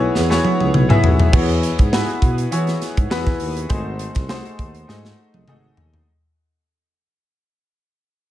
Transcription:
Already playing: B3 E4 F#4 G#4 B4 C#5
0.15 E2, snare
0.30 B3 E4 F#4 G#4 C#5, snare
0.44 high tom
0.60 C#2, high tom
0.74 B1, mid tom
0.89 B3 E4 F#4 G#4 E5, mid tom
1.04 B1, floor tom
1.20 floor tom
1.32 E2 B3 E4 F#4 G#4 C#5, kick, crash
1.49 closed hi-hat
1.63 closed hi-hat
1.79 G#2, kick, closed hi-hat
1.92 B3 E4 F#4 G#4 B4, snare
2.09 closed hi-hat
2.22 B2, kick, closed hi-hat
2.38 closed hi-hat
2.51 E3 B3 E4 F#4 G#4 C#5, closed hi-hat
2.67 snare, closed hi-hat
2.82 snare, closed hi-hat
2.97 G#2, kick, closed hi-hat
3.10 E2 B3 E4 F#4 G#4 B4, snare
3.27 kick, snare
3.40 D#2, open hi-hat
3.57 closed hi-hat
3.69 G#1 A3 D#4 F#4 G#4 C5, kick, closed hi-hat
3.99 closed hi-hat
4.15 C2, kick, snare, closed hi-hat
4.29 A3 D#4 F#4 G#4 C5, snare
4.45 closed hi-hat
4.59 D#2, kick, closed hi-hat
4.75 closed hi-hat
4.87 G#2 A3 D#4 F#4 G#4 D#5, snare
5.05 snare
5.34 C2, high tom
5.48 G#1 A3 D#4 F#4 G#4 D#5, mid tom
5.77 D#2, floor tom
5.94 floor tom

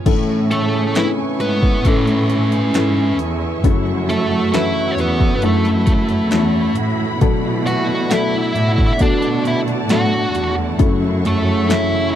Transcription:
Already playing: F3 C#4 F4 G#4
0.05 A2 C#3 E3 A3 C#4 E4 A4 E5 G#5 C#6, kick, closed hi-hat, crash
0.29 E4
0.51 A3 C#4 A4, closed hi-hat
0.74 G#4
0.95 C4 C#4 E4 G#4 A4 B4 E5, snare, closed hi-hat
1.03 C#4
1.19 E4
1.40 G#2 B3 B4, closed hi-hat
1.63 C#4, kick
1.85 A2 A3 C#4 E4 A4 B4 G#5, kick, closed hi-hat
2.07 E4, closed hi-hat
2.30 C#4, closed hi-hat
2.52 closed hi-hat
2.74 G#2 E3 C#4 E4 A4 B4, snare, closed hi-hat
2.96 E4
3.18 E2 G#4, closed hi-hat
3.41 C#4
3.64 F#2 C#3 F#3 A3 C#4 E4 F#4 A4 F#5 C#6, kick, closed hi-hat
3.86 C#4
4.08 A3 A4, closed hi-hat
4.31 F#4
4.53 E3 A3 C#4 E4 F#4 B4 E5, snare, closed hi-hat
4.76 C#4
4.92 C#5
4.97 E2 B3 F#4, closed hi-hat
5.01 B4
5.20 A3, kick
5.41 F#2 A3 C#4 E4 F#4 A4 B5, closed hi-hat
5.45 A3 A4
5.65 C#4, closed hi-hat
5.86 A3, kick, closed hi-hat
6.09 F#4, closed hi-hat
6.31 E2 E3 A3 C#4 E4 F#4 A4, snare, closed hi-hat
6.54 C#4
6.75 A2 F#4, closed hi-hat
6.99 A3
7.21 B2 E3 F#3 A3 B3 D4 E4 F#4 A4 D5, kick, closed hi-hat
7.45 D4
7.66 A3 F#4 F#5, closed hi-hat
7.88 F#4
8.10 F#3 A3 B3 D4 F#4 A4 E5, snare, closed hi-hat
8.14 E4
8.34 D4
8.55 A2 F#4, closed hi-hat
8.78 A3, kick
8.93 E5
8.99 B2 D3 A3 B3 D4 F#4 A4 D5 A5, kick, closed hi-hat
9.22 D4, closed hi-hat
9.45 A3 E4 E5, closed hi-hat
9.67 F#4, closed hi-hat
9.89 A2 F#3 A3 B3 D4 F#4 A4 F#5, snare, closed hi-hat
10.12 D4
10.35 E2 F#4, closed hi-hat
10.58 A3
10.79 F#2 C#3 A3 C#4 E4 F#4 A4 E5 C#6, kick, closed hi-hat
11.02 C#4
11.25 A3 A4, closed hi-hat
11.47 F#4
11.69 E3 A3 C#4 E4 F#4 A4 E5, snare, closed hi-hat
11.93 C#4

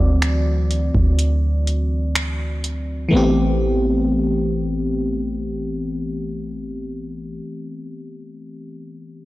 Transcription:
Already playing: E3 F#3 C4 F#4 D5
0.00 D2
0.22 finger snap, closed hi-hat
0.71 closed hi-hat
0.95 D2, kick
1.19 closed hi-hat
1.67 closed hi-hat
2.15 finger snap, closed hi-hat
2.64 closed hi-hat
3.09 E3 A3 B3
3.13 A1 C4 G4

